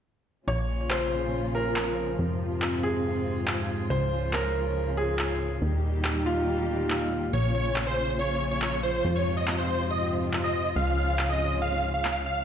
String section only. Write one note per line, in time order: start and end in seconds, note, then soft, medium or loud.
0.47 2.17 A#2 medium
0.47 2.17 C#3 medium
0.47 3.87 F3 medium
0.47 2.17 C#4 medium
0.47 2.17 F4 medium
2.19 5.58 G#2 medium
2.19 3.89 C3 medium
2.19 3.89 C4 medium
2.19 5.58 F4 medium
3.90 5.60 C#3 medium
3.90 5.60 F3 medium
3.90 5.60 C#4 medium
5.61 9.01 A#2 medium
5.61 7.31 D#3 medium
5.61 7.31 G3 medium
5.61 7.31 D#4 medium
5.61 7.31 G4 medium
7.33 9.03 C#3 medium
7.33 12.43 F3 medium
7.33 9.03 C#4 medium
7.33 12.43 F4 medium
9.04 10.74 G#2 medium
9.04 10.74 C3 medium
9.04 10.74 C4 medium
10.76 12.44 G#2 medium
10.76 12.44 C#3 medium
10.76 12.44 C#4 medium